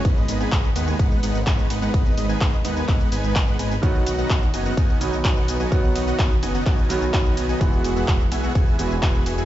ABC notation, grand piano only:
X:1
M:4/4
L:1/8
Q:1/4=127
K:B
V:1 name="Grand piano"
z8 | z8 | [D,F,B,F]4- [D,F,B,F] [D,F,B,F]3 | [D,F,B,F]4- [D,F,B,F] [D,F,B,F]3 |
[E,G,B,F]4- [E,G,B,F] [E,G,B,F]3 |]